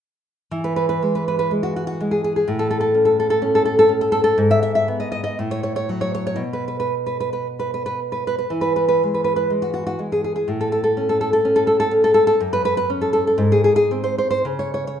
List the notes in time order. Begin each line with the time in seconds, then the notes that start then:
0.51 E3
0.64 B4
0.76 B4
0.89 B4
1.02 G#3
1.15 B4
1.28 B4
1.39 B4
1.51 G#3
1.63 F#4
1.76 F#4
1.87 F#4
2.01 G#3
2.11 G#4
2.24 G#4
2.36 G#4
2.48 A2
2.59 A4
2.71 A4
2.81 A4
2.94 C#4
3.05 A4
3.20 A4
3.30 A4
3.42 C#4
3.55 A4
3.65 A4
3.79 A4
3.89 C#4
4.01 A4
4.12 A4
4.24 A4
4.38 G#2
4.51 E5
4.63 E5
4.75 E5
4.88 B3
5.00 D#5
5.12 D#5
5.24 D#5
5.39 A2
5.51 C#5
5.63 C#5
5.76 C#5
5.89 F#3
6.01 C#5
6.15 C#5
6.27 C#5
6.36 B2
6.53 B4
6.68 B4
6.80 B4
7.07 B4
7.20 B4
7.33 B4
7.59 B4
7.74 B4
7.86 B4
8.12 B4
8.27 B4
8.39 B4
8.50 E3
8.61 B4
8.76 B4
8.88 B4
9.03 G#3
9.14 B4
9.24 B4
9.36 B4
9.50 G#3
9.62 F#4
9.74 F#4
9.87 F#4
9.99 G#3
10.12 G#4
10.24 G#4
10.36 G#4
10.48 A2
10.61 A4
10.72 A4
10.84 A4
10.97 C#4
11.09 A4
11.21 A4
11.33 A4
11.45 C#4
11.56 A4
11.67 A4
11.80 A4
11.91 C#4
12.04 A4
12.14 A4
12.27 A4
12.40 F#2
12.53 B4
12.65 B4
12.77 B4
12.90 C#4
13.01 A4
13.13 A4
13.27 A4
13.38 G#2
13.52 G#4
13.64 G#4
13.76 G#4
13.91 C4
14.04 C5
14.18 C5
14.31 C5
14.45 C#3
14.59 C#5
14.74 C#5
14.87 C#5